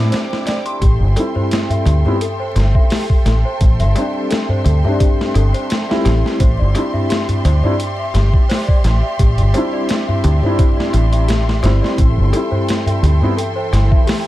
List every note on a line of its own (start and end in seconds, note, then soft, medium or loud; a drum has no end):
0.00 0.10 A2 medium
0.00 0.80 G3 medium
0.00 0.80 C4 medium
0.00 0.81 D4 medium
0.00 0.82 E4 medium
0.00 0.82 G4 medium
0.00 0.12 C5 medium
0.00 0.78 C5 medium
0.00 0.47 D5 medium
0.00 0.78 E5 medium
0.00 0.83 E5 medium
0.00 0.78 G5 medium
0.00 0.11 D6 medium
0.00 0.78 D6 medium
0.11 0.30 C5 medium
0.11 snare loud
0.11 closed hi-hat medium
0.11 darbuka tek medium
0.31 snare medium
0.31 darbuka tek soft
0.46 0.64 D5 medium
0.46 snare medium
0.46 closed hi-hat medium
0.46 darbuka tek medium
0.66 0.80 C6 medium
0.66 closed hi-hat soft
0.66 darbuka tek soft
0.81 1.02 A1 medium
0.81 1.15 G4 medium
0.81 6.36 A4 medium
0.81 14.27 E5 medium
0.81 6.36 G5 medium
0.81 14.27 C6 medium
0.81 kick loud
0.81 closed hi-hat medium
0.81 darbuka tek soft
1.00 1.15 G1 medium
1.00 darbuka tek soft
1.16 2.00 G3 medium
1.16 2.02 C4 medium
1.16 2.02 E4 medium
1.16 1.34 A4 medium
1.16 closed hi-hat medium
1.16 darbuka tek medium
1.35 1.69 C5 medium
1.35 darbuka tek soft
1.35 darbuka dum medium
1.51 snare loud
1.51 closed hi-hat medium
1.51 darbuka tek medium
1.70 1.80 E5 medium
1.70 closed hi-hat soft
1.70 darbuka tek soft
1.70 darbuka dum medium
1.85 2.03 D2 medium
1.85 2.20 G4 medium
1.85 closed hi-hat medium
1.85 darbuka tek medium
2.05 2.14 G3 medium
2.05 2.14 B3 medium
2.05 2.14 C4 medium
2.05 2.15 E4 medium
2.05 darbuka tek soft
2.05 darbuka dum medium
2.21 2.38 A4 medium
2.21 closed hi-hat medium
2.21 darbuka tek soft
2.40 2.73 C5 medium
2.40 darbuka tek soft
2.56 2.73 G1 loud
2.56 snare soft
2.56 closed hi-hat medium
2.56 darbuka tek medium
2.75 2.84 E5 medium
2.75 kick medium
2.75 darbuka tek soft
2.90 3.25 G4 medium
2.90 snare loud
2.90 open hi-hat medium
2.90 darbuka tek soft
3.10 kick medium
3.10 darbuka tek soft
3.26 3.43 A1 loud
3.26 3.43 A4 medium
3.26 snare soft
3.26 closed hi-hat medium
3.26 darbuka tek medium
3.45 3.78 C5 medium
3.45 darbuka tek soft
3.61 3.81 A1 medium
3.61 kick loud
3.61 closed hi-hat medium
3.61 darbuka tek medium
3.79 3.94 G1 medium
3.79 3.89 E5 medium
3.79 closed hi-hat soft
3.79 darbuka tek soft
3.95 4.80 G3 medium
3.95 4.81 C4 medium
3.95 4.81 D4 medium
3.95 4.29 G4 medium
3.95 closed hi-hat medium
3.95 darbuka tek loud
4.14 darbuka tek soft
4.30 4.48 A4 medium
4.30 snare loud
4.30 closed hi-hat medium
4.30 darbuka tek medium
4.49 4.83 C5 medium
4.49 darbuka tek soft
4.49 darbuka dum medium
4.65 4.82 D2 medium
4.65 closed hi-hat medium
4.65 darbuka tek medium
4.84 5.85 G3 medium
4.84 5.87 C4 medium
4.84 5.87 D4 loud
4.84 4.94 E5 medium
4.84 darbuka tek soft
4.84 darbuka dum medium
5.00 5.34 G4 medium
5.00 kick loud
5.00 closed hi-hat medium
5.00 darbuka tek medium
5.18 snare medium
5.18 darbuka tek soft
5.34 5.52 G1 loud
5.34 5.52 A4 medium
5.34 closed hi-hat medium
5.34 darbuka tek medium
5.54 5.87 C5 medium
5.54 closed hi-hat soft
5.54 darbuka tek soft
5.70 snare loud
5.70 closed hi-hat medium
5.70 darbuka tek medium
5.89 6.38 G3 medium
5.89 6.39 C4 medium
5.89 6.39 E4 loud
5.89 5.98 E5 medium
5.89 snare medium
5.89 darbuka tek soft
6.05 6.22 A1 loud
6.05 6.38 G4 medium
6.05 snare medium
6.05 closed hi-hat medium
6.05 darbuka tek medium
6.24 snare soft
6.24 darbuka tek soft
6.40 6.61 A1 loud
6.40 11.95 G4 medium
6.40 6.57 C5 medium
6.40 11.95 D5 medium
6.40 kick loud
6.40 closed hi-hat loud
6.40 darbuka tek medium
6.59 6.73 G1 medium
6.59 6.92 D5 medium
6.59 darbuka tek soft
6.74 7.59 G3 medium
6.74 7.59 C4 medium
6.74 7.60 D4 medium
6.74 closed hi-hat medium
6.74 darbuka tek loud
6.78 7.61 E4 medium
6.93 7.03 E5 medium
6.93 darbuka tek soft
6.93 darbuka dum medium
7.09 7.43 G4 medium
7.09 snare loud
7.09 closed hi-hat medium
7.09 darbuka tek medium
7.29 closed hi-hat soft
7.29 darbuka tek soft
7.29 darbuka dum medium
7.45 7.61 D2 medium
7.45 7.62 C5 medium
7.45 closed hi-hat medium
7.45 darbuka tek loud
7.63 7.72 G3 medium
7.63 7.72 C4 medium
7.63 7.72 D4 medium
7.63 7.73 E4 loud
7.63 7.96 D5 medium
7.63 darbuka tek soft
7.63 darbuka dum medium
7.80 closed hi-hat medium
7.80 darbuka tek medium
7.98 8.08 E5 medium
7.98 darbuka tek soft
8.14 8.31 G1 loud
8.14 8.48 G4 medium
8.14 snare soft
8.14 closed hi-hat medium
8.14 darbuka tek medium
8.33 kick medium
8.33 darbuka tek soft
8.49 8.66 C5 medium
8.49 snare loud
8.49 open hi-hat medium
8.49 darbuka tek medium
8.68 9.01 D5 medium
8.68 kick medium
8.68 darbuka tek soft
8.84 9.01 A1 medium
8.84 snare medium
8.84 closed hi-hat medium
8.84 darbuka tek medium
9.03 9.12 E5 medium
9.03 darbuka tek soft
9.19 9.40 A1 loud
9.19 9.53 G4 medium
9.19 kick loud
9.19 closed hi-hat loud
9.19 darbuka tek medium
9.38 9.52 G1 medium
9.38 closed hi-hat soft
9.38 darbuka tek soft
9.53 10.38 G3 medium
9.53 10.39 C4 medium
9.53 10.39 D4 medium
9.53 9.71 C5 medium
9.53 closed hi-hat medium
9.53 darbuka tek loud
9.58 10.40 E4 medium
9.73 10.06 D5 medium
9.73 darbuka tek soft
9.89 snare loud
9.89 closed hi-hat medium
9.89 darbuka tek medium
10.08 10.17 E5 medium
10.08 darbuka tek soft
10.08 darbuka dum medium
10.23 10.41 D2 medium
10.23 10.57 G4 medium
10.23 closed hi-hat medium
10.23 darbuka tek loud
10.42 11.43 G3 medium
10.42 11.44 C4 medium
10.42 11.45 D4 medium
10.42 11.45 E4 loud
10.42 darbuka tek soft
10.42 darbuka dum medium
10.58 10.76 C5 medium
10.58 kick loud
10.58 closed hi-hat medium
10.58 darbuka tek medium
10.77 11.10 D5 medium
10.77 snare medium
10.77 darbuka tek soft
10.93 11.61 A1 loud
10.93 closed hi-hat medium
10.93 darbuka tek medium
11.12 11.22 E5 medium
11.12 closed hi-hat soft
11.12 darbuka tek soft
11.28 11.62 G4 medium
11.28 snare loud
11.28 closed hi-hat medium
11.28 darbuka tek soft
11.46 snare medium
11.46 darbuka tek soft
11.63 11.80 G1 medium
11.63 12.29 G3 medium
11.63 12.30 C4 medium
11.63 12.30 E4 medium
11.63 11.80 C5 medium
11.63 snare medium
11.63 closed hi-hat medium
11.63 darbuka tek medium
11.82 11.98 D5 medium
11.82 snare soft
11.82 darbuka tek soft
11.98 12.19 A1 loud
11.98 14.27 E3 medium
11.98 14.27 E4 medium
11.98 12.31 G4 medium
11.98 14.27 A4 medium
11.98 14.27 G5 medium
11.98 kick loud
11.98 closed hi-hat loud
11.98 darbuka tek medium
12.16 12.31 G1 medium
12.16 darbuka tek soft
12.32 13.17 G3 medium
12.32 13.18 C4 medium
12.32 12.50 A4 medium
12.32 closed hi-hat medium
12.32 darbuka tek medium
12.36 13.19 E4 medium
12.51 12.85 C5 medium
12.51 darbuka tek soft
12.51 darbuka dum medium
12.67 snare loud
12.67 closed hi-hat medium
12.67 darbuka tek medium
12.86 12.96 E5 medium
12.86 closed hi-hat soft
12.86 darbuka tek soft
12.86 darbuka dum medium
13.02 13.19 D2 medium
13.02 13.36 G4 medium
13.02 closed hi-hat medium
13.02 darbuka tek medium
13.21 13.30 G3 medium
13.21 13.30 B3 medium
13.21 13.31 C4 medium
13.21 13.31 E4 loud
13.21 darbuka tek soft
13.21 darbuka dum medium
13.37 13.54 A4 medium
13.37 closed hi-hat medium
13.37 darbuka tek medium
13.56 13.89 C5 medium
13.56 darbuka tek soft
13.73 13.89 G1 loud
13.73 snare soft
13.73 closed hi-hat medium
13.73 darbuka tek medium
13.91 14.00 E5 medium
13.91 kick medium
13.91 darbuka tek soft
14.07 14.27 G4 medium
14.07 snare loud
14.07 open hi-hat medium
14.07 darbuka tek medium